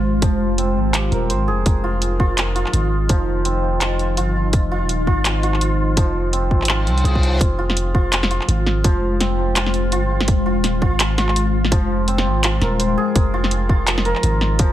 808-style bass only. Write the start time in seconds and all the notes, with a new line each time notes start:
Already playing: G#1
0.22 F1
0.76 G#1
1.12 D#1
1.30 G#1
1.48 F1
1.66 F1
2.73 G#1
3.10 F1
4.17 G1
4.53 F1
4.82 D#1
5.07 G#1
5.97 F1
6.51 G#1
6.87 C2
7.04 C2
7.41 F1
8.48 G#1
8.84 F1
9.92 G1
10.28 F1
10.56 D#1
10.82 G#1
11.72 F1
12.26 G#1
12.61 D#1
13.15 F1
14.23 G#1
14.59 F1